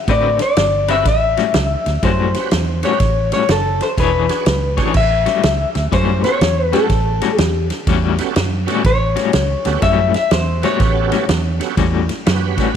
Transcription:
Already playing: E5
0.08 A2 D3 C4 F#4 B4 D5, kick, snare, ride
0.39 D5, muted clean electric guitar stroke, snare, ride
0.57 G1, muted clean electric guitar stroke, snare, ride
0.88 D3 C4 C#4 F#4 G4 B4 E5, snare, ride
1.05 A1 E5, muted clean electric guitar stroke, kick, snare, ride
1.37 A2 G3 C#4 F#4, snare, ride
1.54 C#2, muted clean electric guitar stroke, snare, ride
1.86 D2, muted clean electric guitar stroke, snare, ride
2.03 F#2 A2 G3 C#4 F#4 C5, kick, snare, ride
2.34 C#4 F#4 G4 B4, muted clean electric guitar stroke, snare, ride
2.51 E2, muted clean electric guitar stroke, snare, ride
2.83 A2 G3 C#4 F#4 G4 B4 C#5, snare, ride
3.00 A1, kick, snare, ride
3.32 A2 G3 C#4 F#4 C#5, snare, ride
3.49 F#1 A4, snare, ride
3.81 C5, muted clean electric guitar stroke, snare, ride
3.98 E1 E3 D4 G#4 B4 C#5, kick, snare, ride
4.29 D4 F#4 G#4 C#5, muted clean electric guitar stroke, snare, ride
4.46 C#2, muted clean electric guitar stroke, snare, ride
4.77 A2 E3 C#4 D4 F#4 G4 G#4 C#5, kick, snare, ride
4.94 A1 E5, muted clean electric guitar stroke, kick, snare, crash
5.26 A2 G3 C#4 F#4, snare, ride
5.43 C#2, muted clean electric guitar stroke, snare, ride
5.75 D2, muted clean electric guitar stroke, snare, ride
5.92 F#2 A2 G3 C#4 F#4 C5, kick, snare, ride
6.24 B3 C#4 F#4 G4 A4 C#5, muted clean electric guitar stroke, snare, ride
6.41 E2, muted clean electric guitar stroke, snare, ride
6.72 A2 G3 B3 C#4 F#4 G4 A4, snare, ride
6.90 A1, muted clean electric guitar stroke, kick, snare, ride
7.21 A2 G3 C#4 F#4, snare, ride
7.38 E2 G4, muted clean electric guitar stroke, snare, ride
7.70 muted clean electric guitar stroke, snare, ride
7.87 E2 A2 G3 C#4 F#4, kick, snare, ride
8.18 B3 C#4 F#4 G4 A4, muted clean electric guitar stroke, snare, ride
8.36 F#2, muted clean electric guitar stroke, snare, ride
8.66 A2 G3 B3 C#4 F#4 G4 A4, snare, ride
8.84 A1 C#5, muted clean electric guitar stroke, kick, snare, ride
9.16 A2 G3 C#4 F#4, snare, ride
9.33 C#2, muted clean electric guitar stroke, snare, ride
9.65 D2 B3 C#4 F#4 G4 A4, muted clean electric guitar stroke, snare, ride
9.82 F#2 A2 G3 C#4 F#4 E5, kick, snare, ride
10.14 E5, muted clean electric guitar stroke, snare, ride
10.31 E2 C5, muted clean electric guitar stroke, snare, ride
10.62 A2 G3 B3 C#4 F#4 G4 A4 C#5, snare, ride
10.80 A1, muted clean electric guitar stroke, kick, snare, ride
11.12 A2 G3 C#4 F#4, snare, ride
11.29 E2, muted clean electric guitar stroke, snare, ride
11.60 B3 C#4 F#4 G4 A4, muted clean electric guitar stroke, snare, ride
11.77 E2 A2 G3 C#4 F#4, kick, snare, ride
12.09 muted clean electric guitar stroke, snare, ride
12.26 F#2 B3 C#4 F#4 G4 B4, muted clean electric guitar stroke, snare, ride
12.57 A2 G3 C#4 F#4, kick, snare, ride

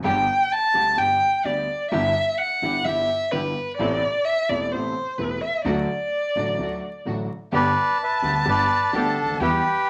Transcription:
0.04 G1 G2 D3 G3 B3 D4 G4 G5
0.51 A5
0.74 D2 D3 G3 B3 D4 G4
0.97 G1 G2 D3 G3 B3 D4 G4 G5
1.44 D2 D3 G3 B3 D4 G4 D5
1.91 G1 G2 D3 G3 B3 D4 E4 G4 E5
2.38 F#5
2.62 G1 G2 D3 G3 B3 D4 E4 G4
2.84 G1 G2 D3 G3 B3 D4 E4 G4 E5
3.31 G1 G2 D3 G3 B3 D4 E4 G4 B4
3.77 A1 A2 C3 A3 B3 C4 E4 A4 D5
4.25 E5
4.49 E1 E2 C3 A3 B3 C4 E4 A4 D5
4.71 A1 A2 C3 A3 B3 C4 E4 A4 C5
5.18 E1 E2 C3 A3 B3 C4 E4 A4 B4
5.41 E5
5.64 D2 D3 F#3 A3 D4 F#4 D5
6.35 A1 A2 D3 F#3 A3 D4 F#4
6.58 D2 D3 F#3 A3 D4 F#4
7.05 A1 A2 D3 F#3 A3 D4 F#4
7.52 G1 G2 D3 G3 B3 D4 G4 B4 D5 A5
8.03 B4 E5
8.22 D2 D3 G3 B3 D4 G4
8.45 G1 G2 D3 G3 B3 D4 G4 B4 D5
8.93 D2 D3 G3 B3 D4 G4 A4
9.22 C#2
9.28 D2
9.34 D#2
9.40 E2 E3 G3 B3 E4 G4 B4 G5

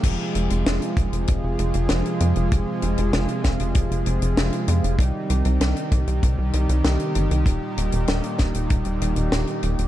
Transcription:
0.04 F1 C3 F3 G#3 F4 G#4, kick, closed hi-hat, crash
0.35 F1, closed hi-hat
0.50 F1, closed hi-hat
0.66 F1, snare, closed hi-hat
0.82 closed hi-hat
0.97 F1, kick, closed hi-hat
1.12 F1, closed hi-hat
1.27 F1, kick, closed hi-hat
1.43 F1
1.59 F1, closed hi-hat
1.74 F1, closed hi-hat
1.89 F1, snare, closed hi-hat
2.05 closed hi-hat
2.20 F2, closed hi-hat
2.36 F1, closed hi-hat
2.52 F1, kick, closed hi-hat
2.82 F1, closed hi-hat
2.98 F1, closed hi-hat
3.13 F1, snare, closed hi-hat
3.28 closed hi-hat
3.44 F1, kick, snare, closed hi-hat
3.60 F1, closed hi-hat
3.75 F1, kick, closed hi-hat
3.91 F1, closed hi-hat
4.06 F1, closed hi-hat
4.22 F1, closed hi-hat
4.37 F1, snare, closed hi-hat
4.53 closed hi-hat
4.68 F2, closed hi-hat
4.83 F1, closed hi-hat
4.99 C2 D#3 G3 D#4 G4, kick, closed hi-hat
5.30 C2, closed hi-hat
5.45 C2, closed hi-hat
5.61 C2, snare, closed hi-hat
5.76 closed hi-hat
5.92 C2, kick, closed hi-hat
6.07 C2, closed hi-hat
6.23 C2, kick, closed hi-hat
6.38 C2
6.53 C2, closed hi-hat
6.69 C2, closed hi-hat
6.84 C2, snare, closed hi-hat
7.00 closed hi-hat
7.15 G1, closed hi-hat
7.31 C2, closed hi-hat
7.46 D#1 A#2 G3, kick, closed hi-hat
7.77 D#1, closed hi-hat
7.92 D#1, closed hi-hat
8.07 D#1, snare, closed hi-hat
8.24 closed hi-hat
8.39 D#1, kick, snare, closed hi-hat
8.54 D#1, closed hi-hat
8.70 D#1, kick, closed hi-hat
8.85 D#1, closed hi-hat
9.01 D#1, closed hi-hat
9.16 D#1, closed hi-hat
9.32 D#1, snare, closed hi-hat
9.47 closed hi-hat
9.63 D#1, closed hi-hat
9.78 D#1, closed hi-hat

